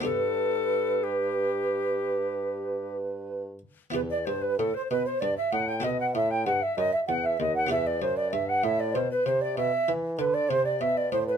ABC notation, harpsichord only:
X:1
M:12/8
L:1/8
Q:3/8=64
K:G
V:1 name="Harpsichord"
[B,DG]12 | [K:Em] [B,EG]6 [B,FA]6 | [B,GB]12 |]
V:2 name="Harpsichord" clef=bass
G,,8- G,,3 z | [K:Em] E,, G,, A,, B,, G,, A,, B,, A,, G,, F,, E,, ^D,, | E,, F,, G,, A,, B,, C, B,, E, D, C, B,, A,, |]